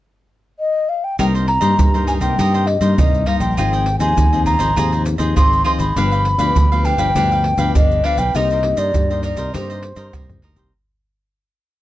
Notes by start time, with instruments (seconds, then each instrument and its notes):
0.60 flute D#5
0.89 flute F5
1.04 flute G5
1.19 fingered electric bass C2, nylon-string guitar C3 G3 A#3 D#4, cavaquinho D#4 A#4 C5 D#5, flute G5, pandeiro, shaker, surdo
1.34 cavaquinho A#4 C5 D#5, pandeiro, shaker
1.47 flute A#5, muted cavaquinho stroke, pandeiro
1.61 fingered electric bass G2, nylon-string guitar G3 A#3 D#4, cavaquinho A#4 C5 D#5, pandeiro, shaker
1.78 fingered electric bass G2, nylon-string guitar G2, pandeiro, shaker, surdo
1.94 nylon-string guitar G3 A#3 D#4, cavaquinho A#4 C5 D#5, pandeiro, shaker
2.07 cavaquinho D#4 A#4 C5 D#5, flute G#5, pandeiro, shaker
2.21 fingered electric bass C2, nylon-string guitar G3 A#3 D#4, cavaquinho A#4 C5 D#5, flute G5, pandeiro, shaker
2.38 fingered electric bass G2, nylon-string guitar C3 G3 A#3 D#4, cavaquinho D#4 A#4 C5 D#5, pandeiro, shaker, surdo
2.54 cavaquinho A#4 C5 D#5, pandeiro, shaker
2.67 flute D#5, muted cavaquinho stroke, pandeiro
2.81 fingered electric bass G2, nylon-string guitar G3 A#3 D#4, cavaquinho A#4 C5 D#5, pandeiro, shaker
2.98 fingered electric bass C2, nylon-string guitar G2, cavaquinho D#4 A#4 C5 D#5, flute D#5, pandeiro, shaker, surdo
3.14 pandeiro, shaker
3.26 nylon-string guitar G3 A#3 D#4, cavaquinho D#4 A#4 C5 D#5, flute F5, pandeiro
3.40 fingered electric bass A#1, cavaquinho A#4 C5 D#5, flute G5, pandeiro, shaker
3.57 fingered electric bass G#1, nylon-string guitar G#2 F3 C4 D#4, cavaquinho F4 G#4 C5 D#5, flute G5, pandeiro, shaker, surdo
3.73 cavaquinho G#4 C5 D#5, pandeiro, shaker
3.86 muted cavaquinho stroke, pandeiro
3.99 fingered electric bass D#2, nylon-string guitar F3 C4 D#4, cavaquinho G#4 C5 D#5, flute G#5, pandeiro, shaker
4.17 fingered electric bass D#2, nylon-string guitar D#3, pandeiro, shaker, surdo
4.33 nylon-string guitar F3 C4 D#4, cavaquinho G#4 C5 D#5, pandeiro, shaker
4.46 cavaquinho F4 G#4 C5 D#5, flute A#5, pandeiro, shaker, surdo
4.59 fingered electric bass G#1, nylon-string guitar F3 C4 D#4, cavaquinho G#4 C5 D#5, pandeiro, shaker
4.76 fingered electric bass D#2, nylon-string guitar G#2 F3 C4 D#4, cavaquinho F4 G#4 C5 D#5, pandeiro, shaker, surdo
4.92 cavaquinho G#4 C5 D#5, pandeiro, shaker
5.05 muted cavaquinho stroke, pandeiro, shaker
5.18 fingered electric bass D#2, nylon-string guitar F3 C4 D#4, cavaquinho G#4 C5 D#5, pandeiro, shaker
5.36 fingered electric bass G#1, nylon-string guitar D#3, cavaquinho F4 G#4 C5 D#5, flute C6, pandeiro, shaker, surdo
5.53 pandeiro, shaker
5.64 nylon-string guitar F3 C4 D#4, cavaquinho F4 G#4 C5 D#5, flute C6, pandeiro
5.79 fingered electric bass G#1, cavaquinho G#4 C5 D#5, flute B5, pandeiro, shaker
5.96 fingered electric bass G1, nylon-string guitar G2 F3 B3 D4, cavaquinho D4 G4 B4 F5, pandeiro, shaker, surdo
6.11 cavaquinho G4 B4 F5, pandeiro, shaker
6.25 muted cavaquinho stroke, pandeiro
6.38 fingered electric bass D2, nylon-string guitar F3 B3 D4, cavaquinho G4 B4 F5, pandeiro, shaker
6.55 fingered electric bass D2, nylon-string guitar D3, pandeiro, shaker, surdo
6.71 nylon-string guitar F3 B3 D4, cavaquinho G4 B4 F5, pandeiro, shaker
6.85 cavaquinho D4 G4 B4 F5, flute G5, pandeiro, shaker
6.97 fingered electric bass G1, nylon-string guitar F3 B3 D4, cavaquinho G4 B4 F5, pandeiro, shaker
7.15 fingered electric bass D2, nylon-string guitar G2 F3 B3 D4, cavaquinho D4 G4 B4 F5, pandeiro, shaker, surdo
7.31 cavaquinho G4 B4 F5, pandeiro, shaker
7.44 muted cavaquinho stroke, pandeiro
7.57 fingered electric bass D2, nylon-string guitar F3 B3 D4, cavaquinho G4 B4 F5, pandeiro, shaker
7.75 fingered electric bass G1, nylon-string guitar D3, cavaquinho D4 G4 B4 F5, flute D#5, pandeiro, shaker, surdo
7.91 pandeiro, shaker
8.03 nylon-string guitar F3 B3 D4, cavaquinho D4 G4 B4 F5, flute F5, pandeiro
8.17 fingered electric bass B1, cavaquinho G4 B4 F5, flute G5, pandeiro, shaker
8.34 fingered electric bass C2, nylon-string guitar C3 A#3 D#4 G4, cavaquinho D#4 A#4 C5 D#5, flute D#5, pandeiro, shaker, surdo
8.50 cavaquinho A#4 C5 D#5, pandeiro, shaker
8.63 nylon-string guitar A#3 D#4 G4, muted cavaquinho stroke, pandeiro
8.77 fingered electric bass G2, cavaquinho A#4 C5 D#5, flute D5, pandeiro, shaker
8.94 nylon-string guitar G2 A#3 D#4 G4, fingered electric bass G2, pandeiro, shaker, surdo
9.09 nylon-string guitar A#3 D#4 G4, cavaquinho A#4 C5 D#5, pandeiro, shaker
9.23 cavaquinho D#4 A#4 C5 D#5, flute D5, pandeiro, shaker
9.37 fingered electric bass C2, cavaquinho A#4 C5 D#5, pandeiro, shaker
9.53 fingered electric bass G2, nylon-string guitar C3 A#3 D#4 G4, cavaquinho D#4 A#4 C5 D#5, flute C5, pandeiro, shaker, surdo
9.70 cavaquinho A#4 C5 D#5, pandeiro, shaker
9.83 muted cavaquinho stroke, pandeiro
9.96 fingered electric bass G2, cavaquinho A#4 C5 D#5, pandeiro, shaker
10.13 fingered electric bass C2, nylon-string guitar G2 A#3 D#4 G4, cavaquinho D#4 A#4 C5 D#5, pandeiro, tamborim, shaker, surdo
10.29 surdo, pandeiro, shaker
10.42 fingered electric bass D2, cavaquinho D#4 A#4 C5 D#5, pandeiro
10.56 fingered electric bass C2, nylon-string guitar A#3 D#4 G4, cavaquinho A#4 C5 D#5, pandeiro, shaker, surdo